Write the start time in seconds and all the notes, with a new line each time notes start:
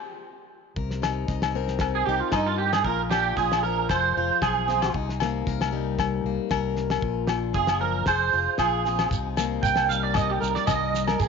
0.76 C2 C3 A#4, kick
0.91 snare
1.02 D#4, snare, low agogo
1.28 C2 D#5, kick, snare
1.42 snare, low agogo
1.55 C4 A#4
1.68 snare
1.79 muted clean electric guitar stroke, kick, snare, low agogo
1.95 G#4
2.06 C2 D#4 G4
2.20 F4
2.32 G2 D#4 D#5, kick, snare, low agogo
2.47 F4
2.58 G4
2.73 G#4, snare, low agogo
2.84 A#1 A#2 F4 A#4, kick
3.11 D4 G4, snare, low agogo
3.37 A#1 F4 G#4, kick, snare
3.52 snare, low agogo
3.63 F3 F4 A#4
3.89 F1 F3 G#4 C5, kick, snare, low agogo
4.17 F1 F4
4.42 B1 F4 G#4, kick, snare, low agogo
4.68 C4 F4, snare
4.82 snare, low agogo
4.94 C2 C3 D#4, kick
5.09 snare
5.20 A#3, snare, low agogo
5.47 C2 A#4, kick, snare
5.61 snare, low agogo
5.72 G3 D#4
5.99 kick, snare, low agogo
6.24 C2 A#3
6.49 C2 G2 A#4, kick, snare, low agogo
6.76 snare
6.90 snare, low agogo
7.01 A#1 A#2 F4, kick
7.27 D4, muted clean electric guitar stroke, snare, low agogo
7.53 F#1 F4 G#4, kick, snare
7.67 snare, low agogo
7.81 F3 A#4
8.06 F1 G#4 C5, muted steel-string acoustic guitar stroke, kick, snare, low agogo
8.33 F1 F4
8.58 A#1 F4 G#4, kick, snare, low agogo
8.85 C4 F4, snare
8.99 snare, low agogo
9.11 C2 C3 D#4, kick, shekere
9.37 A#3, snare, low agogo, shekere
9.63 C2 A#4 G5, kick, shekere
9.76 snare, low agogo
9.89 G3 D#4 F5, shekere
10.03 D5
10.14 D#5, kick, snare, low agogo, shekere
10.30 G4
10.41 C2 A#3 A#4, shekere
10.55 D5, snare
10.67 C2 G2 A#4 D#5, kick, snare, low agogo, shekere
10.94 snare, shekere
11.07 A#4, snare, low agogo
11.19 A#1 A#2 G#4, muted steel-string acoustic guitar stroke, kick, shekere